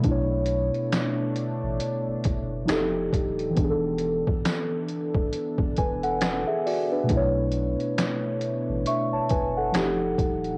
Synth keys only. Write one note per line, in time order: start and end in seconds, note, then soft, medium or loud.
0.00 2.62 B2 medium
0.00 2.63 A3 medium
0.04 2.65 D4 medium
0.04 2.67 E4 medium
0.11 2.68 C#5 medium
2.65 3.55 F3 medium
2.65 3.56 D#4 medium
2.70 3.57 G4 medium
2.70 3.58 A4 medium
3.50 7.03 E3 medium
3.55 7.05 B3 medium
3.59 5.75 D4 medium
3.64 3.68 G#4 medium
3.70 5.80 A4 medium
5.78 6.03 B4 medium
5.78 6.02 G#5 medium
6.03 6.46 A4 medium
6.03 6.45 F#5 medium
6.47 6.65 G#4 medium
6.47 6.64 E5 medium
6.66 6.91 F#4 medium
6.66 6.90 D5 medium
6.92 7.09 D4 medium
6.92 7.34 B4 medium
7.03 9.67 B2 medium
7.03 9.69 A3 medium
7.10 9.71 D4 medium
7.10 9.72 E4 medium
7.17 8.43 C#5 medium
8.87 9.12 E5 medium
8.87 9.11 C#6 medium
9.13 9.30 C#5 medium
9.13 9.30 A5 medium
9.31 9.56 B4 medium
9.31 9.55 G#5 medium
9.57 9.77 A4 medium
9.57 9.99 F#5 medium
9.72 10.58 F3 medium
9.72 10.58 D#4 medium
9.76 10.58 G4 medium
9.76 10.58 A4 medium